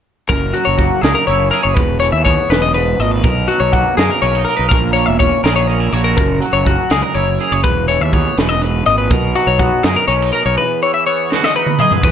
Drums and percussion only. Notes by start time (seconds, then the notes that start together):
0.30 kick, closed hi-hat
0.54 closed hi-hat
0.79 kick, closed hi-hat
1.03 snare, closed hi-hat
1.28 closed hi-hat
1.53 closed hi-hat
1.76 kick, closed hi-hat
2.02 closed hi-hat
2.26 kick, closed hi-hat
2.51 snare, closed hi-hat
2.76 closed hi-hat
3.00 closed hi-hat
3.24 kick, closed hi-hat
3.49 closed hi-hat
3.73 kick, closed hi-hat
3.98 snare, closed hi-hat
4.23 closed hi-hat
4.48 closed hi-hat
4.71 kick, closed hi-hat
4.96 closed hi-hat
5.20 kick, closed hi-hat
5.45 snare, closed hi-hat
5.70 closed hi-hat
5.94 closed hi-hat
6.18 kick, closed hi-hat
6.42 closed hi-hat
6.66 kick, closed hi-hat
6.90 snare, closed hi-hat
7.15 closed hi-hat
7.39 closed hi-hat
7.64 kick, closed hi-hat
7.89 closed hi-hat
8.13 kick, closed hi-hat
8.38 snare, closed hi-hat
8.62 closed hi-hat
8.86 closed hi-hat
9.10 kick, closed hi-hat
9.35 closed hi-hat
9.59 kick, closed hi-hat
9.83 snare, closed hi-hat
10.08 closed hi-hat
10.32 closed hi-hat
11.32 snare
11.44 snare
11.66 mid tom
11.79 mid tom
11.91 floor tom
12.03 kick, crash